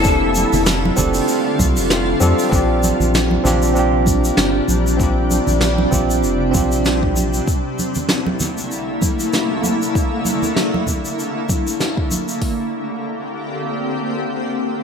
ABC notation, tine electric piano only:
X:1
M:4/4
L:1/8
Q:"Swing 16ths" 1/4=97
K:Bblyd
V:1 name="Tine electric piano"
[CDGA]3 [CDGA] z3 [CDGA] | [CDFG]3 [CDFG] [CDFG]4 | [CDFG]3 [CDFG] z [CDFG]3 | z8 |
z8 | z8 |]